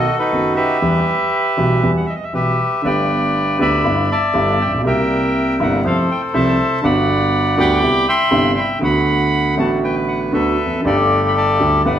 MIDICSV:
0, 0, Header, 1, 3, 480
1, 0, Start_track
1, 0, Key_signature, 1, "major"
1, 0, Tempo, 504202
1, 783, Time_signature, 4, 2, 24, 8
1, 3672, Tempo, 496689
1, 7992, Tempo, 502934
1, 11488, End_track
2, 0, Start_track
2, 0, Title_t, "Bandoneon"
2, 0, Program_c, 0, 23
2, 0, Note_on_c, 0, 66, 69
2, 0, Note_on_c, 0, 69, 67
2, 0, Note_on_c, 0, 75, 96
2, 146, Note_off_c, 0, 75, 0
2, 174, Note_off_c, 0, 66, 0
2, 182, Note_on_c, 0, 71, 83
2, 189, Note_on_c, 0, 66, 63
2, 193, Note_on_c, 0, 63, 62
2, 505, Note_off_c, 0, 69, 0
2, 517, Note_off_c, 0, 71, 0
2, 535, Note_on_c, 0, 76, 83
2, 538, Note_on_c, 0, 67, 61
2, 540, Note_on_c, 0, 71, 61
2, 745, Note_off_c, 0, 66, 0
2, 747, Note_off_c, 0, 63, 0
2, 1831, Note_off_c, 0, 76, 0
2, 1832, Note_off_c, 0, 67, 0
2, 1833, Note_off_c, 0, 71, 0
2, 1877, Note_on_c, 0, 78, 65
2, 1962, Note_on_c, 0, 76, 68
2, 1963, Note_off_c, 0, 78, 0
2, 1993, Note_on_c, 0, 75, 65
2, 2034, Note_off_c, 0, 75, 0
2, 2048, Note_on_c, 0, 75, 59
2, 2049, Note_off_c, 0, 76, 0
2, 2128, Note_on_c, 0, 76, 68
2, 2137, Note_off_c, 0, 75, 0
2, 2221, Note_off_c, 0, 76, 0
2, 2230, Note_on_c, 0, 67, 53
2, 2230, Note_on_c, 0, 71, 49
2, 2246, Note_on_c, 0, 76, 71
2, 2680, Note_off_c, 0, 67, 0
2, 2680, Note_off_c, 0, 71, 0
2, 2713, Note_on_c, 0, 71, 63
2, 2713, Note_on_c, 0, 74, 53
2, 2731, Note_on_c, 0, 79, 78
2, 2736, Note_off_c, 0, 76, 0
2, 3405, Note_off_c, 0, 79, 0
2, 3417, Note_off_c, 0, 74, 0
2, 3430, Note_on_c, 0, 76, 63
2, 3431, Note_on_c, 0, 74, 55
2, 3445, Note_on_c, 0, 83, 73
2, 3635, Note_off_c, 0, 71, 0
2, 3902, Note_off_c, 0, 76, 0
2, 3907, Note_off_c, 0, 74, 0
2, 3916, Note_on_c, 0, 76, 54
2, 3921, Note_on_c, 0, 74, 60
2, 3926, Note_on_c, 0, 81, 75
2, 3934, Note_off_c, 0, 83, 0
2, 4404, Note_on_c, 0, 79, 73
2, 4415, Note_off_c, 0, 81, 0
2, 4510, Note_off_c, 0, 79, 0
2, 4597, Note_off_c, 0, 76, 0
2, 4600, Note_off_c, 0, 74, 0
2, 4643, Note_on_c, 0, 76, 59
2, 4648, Note_on_c, 0, 70, 63
2, 4660, Note_on_c, 0, 79, 81
2, 5326, Note_off_c, 0, 79, 0
2, 5381, Note_on_c, 0, 78, 67
2, 5557, Note_off_c, 0, 76, 0
2, 5560, Note_off_c, 0, 70, 0
2, 5591, Note_off_c, 0, 78, 0
2, 5604, Note_on_c, 0, 72, 55
2, 5605, Note_on_c, 0, 69, 56
2, 5613, Note_on_c, 0, 77, 75
2, 5716, Note_off_c, 0, 77, 0
2, 5851, Note_on_c, 0, 79, 73
2, 5954, Note_off_c, 0, 79, 0
2, 6061, Note_off_c, 0, 72, 0
2, 6074, Note_on_c, 0, 76, 62
2, 6076, Note_on_c, 0, 72, 65
2, 6087, Note_on_c, 0, 81, 84
2, 6518, Note_off_c, 0, 69, 0
2, 6519, Note_off_c, 0, 76, 0
2, 6520, Note_off_c, 0, 72, 0
2, 6552, Note_on_c, 0, 74, 66
2, 6553, Note_on_c, 0, 78, 58
2, 6569, Note_on_c, 0, 83, 78
2, 6573, Note_off_c, 0, 81, 0
2, 7241, Note_off_c, 0, 83, 0
2, 7283, Note_on_c, 0, 83, 64
2, 7285, Note_on_c, 0, 79, 65
2, 7295, Note_on_c, 0, 86, 96
2, 7472, Note_off_c, 0, 74, 0
2, 7472, Note_off_c, 0, 78, 0
2, 7730, Note_off_c, 0, 86, 0
2, 7747, Note_off_c, 0, 79, 0
2, 7752, Note_on_c, 0, 76, 63
2, 7761, Note_on_c, 0, 79, 61
2, 7763, Note_on_c, 0, 84, 83
2, 8198, Note_off_c, 0, 83, 0
2, 8240, Note_on_c, 0, 83, 85
2, 8250, Note_off_c, 0, 84, 0
2, 8346, Note_off_c, 0, 83, 0
2, 8432, Note_off_c, 0, 76, 0
2, 8437, Note_off_c, 0, 79, 0
2, 8475, Note_on_c, 0, 78, 69
2, 8485, Note_on_c, 0, 83, 94
2, 9157, Note_off_c, 0, 83, 0
2, 9201, Note_on_c, 0, 81, 68
2, 9306, Note_off_c, 0, 81, 0
2, 9391, Note_off_c, 0, 78, 0
2, 9434, Note_on_c, 0, 71, 57
2, 9437, Note_on_c, 0, 79, 74
2, 9543, Note_off_c, 0, 79, 0
2, 9666, Note_on_c, 0, 78, 68
2, 9775, Note_off_c, 0, 78, 0
2, 9896, Note_off_c, 0, 71, 0
2, 9910, Note_on_c, 0, 69, 55
2, 9911, Note_on_c, 0, 71, 60
2, 9913, Note_on_c, 0, 76, 72
2, 10360, Note_off_c, 0, 69, 0
2, 10360, Note_off_c, 0, 71, 0
2, 10362, Note_off_c, 0, 76, 0
2, 10408, Note_on_c, 0, 67, 55
2, 10409, Note_on_c, 0, 69, 60
2, 10417, Note_on_c, 0, 74, 76
2, 10791, Note_off_c, 0, 74, 0
2, 10810, Note_on_c, 0, 83, 68
2, 10875, Note_off_c, 0, 83, 0
2, 10896, Note_on_c, 0, 74, 55
2, 10900, Note_on_c, 0, 81, 81
2, 11320, Note_off_c, 0, 67, 0
2, 11321, Note_off_c, 0, 69, 0
2, 11330, Note_off_c, 0, 74, 0
2, 11332, Note_off_c, 0, 81, 0
2, 11361, Note_on_c, 0, 74, 61
2, 11366, Note_on_c, 0, 78, 69
2, 11367, Note_on_c, 0, 71, 50
2, 11488, Note_off_c, 0, 71, 0
2, 11488, Note_off_c, 0, 74, 0
2, 11488, Note_off_c, 0, 78, 0
2, 11488, End_track
3, 0, Start_track
3, 0, Title_t, "Grand piano"
3, 0, Program_c, 1, 0
3, 303, Note_on_c, 1, 30, 53
3, 304, Note_on_c, 1, 57, 42
3, 305, Note_on_c, 1, 51, 46
3, 305, Note_on_c, 1, 59, 40
3, 306, Note_on_c, 1, 42, 53
3, 309, Note_on_c, 1, 66, 51
3, 505, Note_off_c, 1, 30, 0
3, 506, Note_off_c, 1, 42, 0
3, 506, Note_off_c, 1, 51, 0
3, 506, Note_off_c, 1, 57, 0
3, 506, Note_off_c, 1, 59, 0
3, 508, Note_off_c, 1, 66, 0
3, 777, Note_on_c, 1, 52, 73
3, 778, Note_on_c, 1, 55, 59
3, 779, Note_on_c, 1, 40, 77
3, 780, Note_on_c, 1, 59, 63
3, 782, Note_on_c, 1, 67, 68
3, 981, Note_off_c, 1, 52, 0
3, 981, Note_off_c, 1, 55, 0
3, 982, Note_off_c, 1, 40, 0
3, 982, Note_off_c, 1, 59, 0
3, 983, Note_off_c, 1, 67, 0
3, 1494, Note_on_c, 1, 55, 56
3, 1495, Note_on_c, 1, 52, 66
3, 1497, Note_on_c, 1, 35, 78
3, 1499, Note_on_c, 1, 47, 76
3, 1499, Note_on_c, 1, 59, 57
3, 1501, Note_on_c, 1, 67, 65
3, 1698, Note_off_c, 1, 55, 0
3, 1699, Note_off_c, 1, 52, 0
3, 1700, Note_off_c, 1, 35, 0
3, 1701, Note_off_c, 1, 47, 0
3, 1701, Note_off_c, 1, 59, 0
3, 1702, Note_off_c, 1, 67, 0
3, 1740, Note_on_c, 1, 52, 70
3, 1740, Note_on_c, 1, 59, 56
3, 1741, Note_on_c, 1, 55, 54
3, 1744, Note_on_c, 1, 40, 71
3, 1746, Note_on_c, 1, 67, 58
3, 1943, Note_off_c, 1, 55, 0
3, 1943, Note_off_c, 1, 59, 0
3, 1944, Note_off_c, 1, 52, 0
3, 1945, Note_off_c, 1, 40, 0
3, 1946, Note_off_c, 1, 67, 0
3, 2217, Note_on_c, 1, 52, 42
3, 2219, Note_on_c, 1, 35, 44
3, 2219, Note_on_c, 1, 55, 37
3, 2220, Note_on_c, 1, 47, 48
3, 2221, Note_on_c, 1, 67, 49
3, 2222, Note_on_c, 1, 59, 37
3, 2426, Note_off_c, 1, 52, 0
3, 2427, Note_off_c, 1, 35, 0
3, 2427, Note_off_c, 1, 47, 0
3, 2427, Note_off_c, 1, 55, 0
3, 2428, Note_off_c, 1, 59, 0
3, 2428, Note_off_c, 1, 67, 0
3, 2685, Note_on_c, 1, 50, 68
3, 2697, Note_on_c, 1, 57, 58
3, 2704, Note_on_c, 1, 43, 76
3, 2705, Note_on_c, 1, 31, 67
3, 2709, Note_on_c, 1, 59, 60
3, 2720, Note_on_c, 1, 67, 66
3, 3384, Note_off_c, 1, 50, 0
3, 3390, Note_off_c, 1, 57, 0
3, 3394, Note_off_c, 1, 31, 0
3, 3394, Note_off_c, 1, 43, 0
3, 3396, Note_off_c, 1, 59, 0
3, 3402, Note_off_c, 1, 67, 0
3, 3417, Note_on_c, 1, 50, 82
3, 3418, Note_on_c, 1, 57, 69
3, 3421, Note_on_c, 1, 38, 78
3, 3422, Note_on_c, 1, 59, 61
3, 3422, Note_on_c, 1, 67, 78
3, 3626, Note_off_c, 1, 57, 0
3, 3627, Note_off_c, 1, 50, 0
3, 3628, Note_off_c, 1, 38, 0
3, 3628, Note_off_c, 1, 59, 0
3, 3628, Note_off_c, 1, 67, 0
3, 3655, Note_on_c, 1, 43, 83
3, 3658, Note_on_c, 1, 31, 78
3, 3658, Note_on_c, 1, 64, 74
3, 3659, Note_on_c, 1, 50, 58
3, 3659, Note_on_c, 1, 59, 56
3, 3661, Note_on_c, 1, 55, 56
3, 3868, Note_off_c, 1, 31, 0
3, 3868, Note_off_c, 1, 50, 0
3, 3868, Note_off_c, 1, 59, 0
3, 3868, Note_off_c, 1, 64, 0
3, 3869, Note_off_c, 1, 43, 0
3, 3869, Note_off_c, 1, 55, 0
3, 4135, Note_on_c, 1, 50, 65
3, 4136, Note_on_c, 1, 43, 88
3, 4137, Note_on_c, 1, 31, 85
3, 4137, Note_on_c, 1, 55, 66
3, 4138, Note_on_c, 1, 59, 70
3, 4139, Note_on_c, 1, 64, 75
3, 4346, Note_off_c, 1, 50, 0
3, 4347, Note_off_c, 1, 55, 0
3, 4348, Note_off_c, 1, 31, 0
3, 4348, Note_off_c, 1, 43, 0
3, 4348, Note_off_c, 1, 59, 0
3, 4348, Note_off_c, 1, 64, 0
3, 4444, Note_on_c, 1, 33, 49
3, 4508, Note_on_c, 1, 34, 54
3, 4509, Note_off_c, 1, 33, 0
3, 4568, Note_on_c, 1, 35, 71
3, 4571, Note_off_c, 1, 34, 0
3, 4611, Note_on_c, 1, 48, 73
3, 4623, Note_on_c, 1, 55, 62
3, 4630, Note_on_c, 1, 36, 79
3, 4631, Note_off_c, 1, 35, 0
3, 4635, Note_on_c, 1, 58, 62
3, 4649, Note_on_c, 1, 64, 70
3, 5311, Note_off_c, 1, 55, 0
3, 5314, Note_off_c, 1, 36, 0
3, 5314, Note_off_c, 1, 48, 0
3, 5316, Note_off_c, 1, 58, 0
3, 5323, Note_off_c, 1, 64, 0
3, 5353, Note_on_c, 1, 43, 81
3, 5353, Note_on_c, 1, 48, 68
3, 5353, Note_on_c, 1, 55, 67
3, 5353, Note_on_c, 1, 64, 77
3, 5354, Note_on_c, 1, 31, 81
3, 5355, Note_on_c, 1, 58, 62
3, 5554, Note_off_c, 1, 43, 0
3, 5554, Note_off_c, 1, 48, 0
3, 5554, Note_off_c, 1, 55, 0
3, 5554, Note_off_c, 1, 64, 0
3, 5555, Note_off_c, 1, 31, 0
3, 5555, Note_off_c, 1, 58, 0
3, 5586, Note_on_c, 1, 48, 61
3, 5591, Note_on_c, 1, 53, 80
3, 5592, Note_on_c, 1, 64, 77
3, 5593, Note_on_c, 1, 41, 79
3, 5594, Note_on_c, 1, 57, 58
3, 5790, Note_off_c, 1, 48, 0
3, 5793, Note_off_c, 1, 53, 0
3, 5793, Note_off_c, 1, 64, 0
3, 5794, Note_off_c, 1, 41, 0
3, 5794, Note_off_c, 1, 57, 0
3, 6072, Note_on_c, 1, 36, 88
3, 6072, Note_on_c, 1, 64, 83
3, 6073, Note_on_c, 1, 48, 82
3, 6074, Note_on_c, 1, 53, 74
3, 6074, Note_on_c, 1, 57, 67
3, 6272, Note_off_c, 1, 36, 0
3, 6273, Note_off_c, 1, 48, 0
3, 6273, Note_off_c, 1, 53, 0
3, 6273, Note_off_c, 1, 57, 0
3, 6273, Note_off_c, 1, 64, 0
3, 6530, Note_on_c, 1, 50, 65
3, 6541, Note_on_c, 1, 55, 65
3, 6548, Note_on_c, 1, 43, 82
3, 6550, Note_on_c, 1, 31, 86
3, 6552, Note_on_c, 1, 59, 66
3, 6567, Note_on_c, 1, 66, 69
3, 7224, Note_off_c, 1, 50, 0
3, 7229, Note_off_c, 1, 55, 0
3, 7233, Note_off_c, 1, 43, 0
3, 7234, Note_off_c, 1, 31, 0
3, 7235, Note_off_c, 1, 59, 0
3, 7243, Note_off_c, 1, 66, 0
3, 7262, Note_on_c, 1, 50, 86
3, 7264, Note_on_c, 1, 55, 64
3, 7265, Note_on_c, 1, 66, 74
3, 7268, Note_on_c, 1, 38, 92
3, 7269, Note_on_c, 1, 59, 66
3, 7469, Note_off_c, 1, 50, 0
3, 7469, Note_off_c, 1, 55, 0
3, 7469, Note_off_c, 1, 66, 0
3, 7470, Note_off_c, 1, 38, 0
3, 7471, Note_off_c, 1, 59, 0
3, 7501, Note_on_c, 1, 48, 88
3, 7505, Note_on_c, 1, 36, 69
3, 7506, Note_on_c, 1, 55, 67
3, 7507, Note_on_c, 1, 59, 64
3, 7509, Note_on_c, 1, 64, 81
3, 7709, Note_off_c, 1, 36, 0
3, 7710, Note_off_c, 1, 55, 0
3, 7710, Note_off_c, 1, 59, 0
3, 7711, Note_off_c, 1, 48, 0
3, 7711, Note_off_c, 1, 64, 0
3, 7972, Note_on_c, 1, 48, 72
3, 7974, Note_on_c, 1, 55, 69
3, 7975, Note_on_c, 1, 59, 74
3, 7976, Note_on_c, 1, 31, 86
3, 7977, Note_on_c, 1, 64, 83
3, 7978, Note_on_c, 1, 43, 88
3, 8182, Note_off_c, 1, 48, 0
3, 8183, Note_off_c, 1, 55, 0
3, 8184, Note_off_c, 1, 31, 0
3, 8184, Note_off_c, 1, 59, 0
3, 8185, Note_off_c, 1, 43, 0
3, 8185, Note_off_c, 1, 64, 0
3, 8434, Note_on_c, 1, 50, 70
3, 8445, Note_on_c, 1, 57, 65
3, 8449, Note_off_c, 1, 50, 0
3, 8453, Note_on_c, 1, 38, 81
3, 8456, Note_on_c, 1, 59, 57
3, 8457, Note_on_c, 1, 50, 81
3, 8471, Note_on_c, 1, 66, 74
3, 9139, Note_off_c, 1, 57, 0
3, 9142, Note_off_c, 1, 38, 0
3, 9144, Note_off_c, 1, 50, 0
3, 9144, Note_off_c, 1, 59, 0
3, 9152, Note_off_c, 1, 66, 0
3, 9161, Note_on_c, 1, 50, 60
3, 9175, Note_on_c, 1, 57, 61
3, 9183, Note_on_c, 1, 33, 80
3, 9183, Note_on_c, 1, 45, 84
3, 9186, Note_on_c, 1, 59, 67
3, 9200, Note_on_c, 1, 66, 73
3, 9862, Note_off_c, 1, 50, 0
3, 9868, Note_off_c, 1, 57, 0
3, 9873, Note_off_c, 1, 33, 0
3, 9873, Note_off_c, 1, 45, 0
3, 9874, Note_off_c, 1, 59, 0
3, 9881, Note_off_c, 1, 66, 0
3, 9894, Note_on_c, 1, 50, 85
3, 9898, Note_on_c, 1, 59, 56
3, 9901, Note_on_c, 1, 38, 72
3, 9901, Note_on_c, 1, 57, 65
3, 9905, Note_on_c, 1, 66, 75
3, 10108, Note_off_c, 1, 50, 0
3, 10108, Note_off_c, 1, 59, 0
3, 10109, Note_off_c, 1, 38, 0
3, 10109, Note_off_c, 1, 57, 0
3, 10111, Note_off_c, 1, 66, 0
3, 10214, Note_on_c, 1, 40, 48
3, 10274, Note_off_c, 1, 40, 0
3, 10282, Note_on_c, 1, 41, 56
3, 10338, Note_off_c, 1, 41, 0
3, 10341, Note_on_c, 1, 42, 72
3, 10377, Note_on_c, 1, 50, 67
3, 10390, Note_on_c, 1, 55, 59
3, 10397, Note_on_c, 1, 43, 85
3, 10398, Note_off_c, 1, 42, 0
3, 10399, Note_on_c, 1, 31, 86
3, 10403, Note_on_c, 1, 57, 60
3, 10417, Note_on_c, 1, 67, 68
3, 11069, Note_off_c, 1, 50, 0
3, 11076, Note_off_c, 1, 55, 0
3, 11079, Note_off_c, 1, 43, 0
3, 11080, Note_off_c, 1, 31, 0
3, 11082, Note_off_c, 1, 57, 0
3, 11089, Note_off_c, 1, 67, 0
3, 11111, Note_on_c, 1, 50, 80
3, 11113, Note_on_c, 1, 57, 58
3, 11114, Note_on_c, 1, 55, 66
3, 11115, Note_on_c, 1, 38, 85
3, 11118, Note_on_c, 1, 67, 69
3, 11313, Note_off_c, 1, 50, 0
3, 11313, Note_off_c, 1, 57, 0
3, 11314, Note_off_c, 1, 55, 0
3, 11315, Note_off_c, 1, 38, 0
3, 11316, Note_off_c, 1, 67, 0
3, 11354, Note_on_c, 1, 43, 77
3, 11356, Note_on_c, 1, 31, 80
3, 11356, Note_on_c, 1, 50, 60
3, 11357, Note_on_c, 1, 55, 62
3, 11359, Note_on_c, 1, 59, 67
3, 11361, Note_on_c, 1, 64, 72
3, 11488, Note_off_c, 1, 31, 0
3, 11488, Note_off_c, 1, 43, 0
3, 11488, Note_off_c, 1, 50, 0
3, 11488, Note_off_c, 1, 55, 0
3, 11488, Note_off_c, 1, 59, 0
3, 11488, Note_off_c, 1, 64, 0
3, 11488, End_track
0, 0, End_of_file